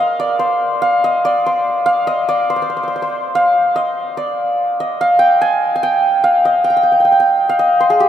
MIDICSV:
0, 0, Header, 1, 2, 480
1, 0, Start_track
1, 0, Tempo, 419874
1, 434, Time_signature, 5, 2, 24, 8
1, 4751, Tempo, 412371
1, 9327, End_track
2, 0, Start_track
2, 0, Title_t, "Santur"
2, 0, Program_c, 0, 15
2, 0, Note_on_c, 0, 70, 86
2, 0, Note_on_c, 0, 72, 80
2, 0, Note_on_c, 0, 75, 86
2, 0, Note_on_c, 0, 77, 97
2, 224, Note_on_c, 0, 74, 81
2, 293, Note_off_c, 0, 75, 0
2, 445, Note_off_c, 0, 72, 0
2, 450, Note_on_c, 0, 72, 67
2, 930, Note_off_c, 0, 77, 0
2, 934, Note_on_c, 0, 77, 90
2, 965, Note_off_c, 0, 70, 0
2, 1189, Note_on_c, 0, 75, 83
2, 1258, Note_off_c, 0, 74, 0
2, 1427, Note_on_c, 0, 74, 87
2, 1496, Note_off_c, 0, 75, 0
2, 1669, Note_off_c, 0, 72, 0
2, 1673, Note_on_c, 0, 72, 61
2, 2119, Note_off_c, 0, 77, 0
2, 2123, Note_on_c, 0, 77, 92
2, 2367, Note_on_c, 0, 75, 85
2, 2436, Note_off_c, 0, 74, 0
2, 2613, Note_on_c, 0, 74, 86
2, 2682, Note_off_c, 0, 75, 0
2, 2852, Note_off_c, 0, 72, 0
2, 2857, Note_on_c, 0, 72, 69
2, 2924, Note_off_c, 0, 72, 0
2, 2929, Note_on_c, 0, 72, 48
2, 2991, Note_off_c, 0, 72, 0
2, 2996, Note_on_c, 0, 72, 53
2, 3078, Note_off_c, 0, 72, 0
2, 3083, Note_on_c, 0, 72, 47
2, 3158, Note_off_c, 0, 72, 0
2, 3163, Note_on_c, 0, 72, 47
2, 3234, Note_off_c, 0, 72, 0
2, 3239, Note_on_c, 0, 72, 39
2, 3285, Note_off_c, 0, 72, 0
2, 3290, Note_on_c, 0, 72, 49
2, 3376, Note_off_c, 0, 72, 0
2, 3380, Note_on_c, 0, 72, 46
2, 3450, Note_off_c, 0, 72, 0
2, 3455, Note_on_c, 0, 72, 54
2, 3827, Note_off_c, 0, 77, 0
2, 3831, Note_on_c, 0, 77, 88
2, 4295, Note_on_c, 0, 75, 86
2, 4363, Note_off_c, 0, 74, 0
2, 4771, Note_on_c, 0, 74, 71
2, 4840, Note_off_c, 0, 75, 0
2, 5503, Note_on_c, 0, 75, 73
2, 5572, Note_off_c, 0, 74, 0
2, 5738, Note_off_c, 0, 77, 0
2, 5743, Note_on_c, 0, 77, 85
2, 5955, Note_on_c, 0, 79, 85
2, 6216, Note_on_c, 0, 80, 94
2, 6286, Note_off_c, 0, 79, 0
2, 6505, Note_off_c, 0, 72, 0
2, 6608, Note_off_c, 0, 80, 0
2, 6613, Note_on_c, 0, 80, 73
2, 6700, Note_on_c, 0, 79, 86
2, 6770, Note_off_c, 0, 80, 0
2, 7169, Note_off_c, 0, 77, 0
2, 7174, Note_on_c, 0, 77, 84
2, 7420, Note_off_c, 0, 75, 0
2, 7424, Note_on_c, 0, 75, 78
2, 7641, Note_off_c, 0, 79, 0
2, 7646, Note_on_c, 0, 79, 76
2, 7709, Note_off_c, 0, 79, 0
2, 7713, Note_on_c, 0, 79, 52
2, 7785, Note_off_c, 0, 79, 0
2, 7789, Note_on_c, 0, 79, 60
2, 7861, Note_off_c, 0, 79, 0
2, 7866, Note_on_c, 0, 79, 51
2, 7962, Note_off_c, 0, 79, 0
2, 7967, Note_on_c, 0, 79, 52
2, 8057, Note_off_c, 0, 79, 0
2, 8062, Note_on_c, 0, 79, 47
2, 8111, Note_off_c, 0, 79, 0
2, 8116, Note_on_c, 0, 79, 55
2, 8195, Note_off_c, 0, 79, 0
2, 8200, Note_on_c, 0, 79, 49
2, 8288, Note_off_c, 0, 79, 0
2, 8292, Note_on_c, 0, 79, 59
2, 8631, Note_off_c, 0, 77, 0
2, 8636, Note_on_c, 0, 77, 79
2, 8745, Note_off_c, 0, 75, 0
2, 8750, Note_on_c, 0, 75, 75
2, 8997, Note_on_c, 0, 72, 75
2, 9109, Note_on_c, 0, 68, 80
2, 9179, Note_off_c, 0, 79, 0
2, 9228, Note_on_c, 0, 67, 76
2, 9297, Note_off_c, 0, 68, 0
2, 9327, Note_off_c, 0, 67, 0
2, 9327, Note_off_c, 0, 72, 0
2, 9327, Note_off_c, 0, 75, 0
2, 9327, Note_off_c, 0, 77, 0
2, 9327, End_track
0, 0, End_of_file